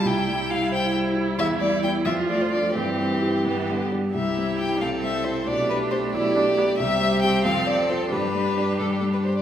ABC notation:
X:1
M:6/8
L:1/16
Q:3/8=90
K:C
V:1 name="Violin"
g4 f2 g2 z4 | e2 d2 g2 e2 d c d2 | G8- G2 z2 | e4 g2 f2 e2 c2 |
d2 B2 c2 d6 | e4 g2 f2 d2 c2 | B6 A G A B c d |]
V:2 name="Violin"
z12 | z12 | z12 | G6 A6 |
G6 G6 | G6 A6 | G8- G2 z2 |]
V:3 name="Viola"
E12- | E6 F6 | C6 B,4 z2 | E6 C6 |
D6 E2 D2 B,2 | C12 | D8- D2 z2 |]
V:4 name="Grand piano"
C,,2 G,2 E2 c2 G2 E2 | E,,2 G,2 [B,E]2 F,,2 A,2 [DA]2 | G,,2 C2 [EG]2 G,,2 B,2 [DG]2 | C,,2 C2 E2 C,,2 C2 E2 |
B,,,2 D2 G2 B,,,2 D2 G2 | C,,2 C2 G2 F,,2 C2 [FA]2 | G,,2 G,2 D2 G,,2 G,2 D2 |]
V:5 name="Cello" clef=bass
G,12 | G,6 F,6 | E,6 E,2 D,2 G,2 | G,12 |
A,12 | G,6 F,6 | G,8- G,2 z2 |]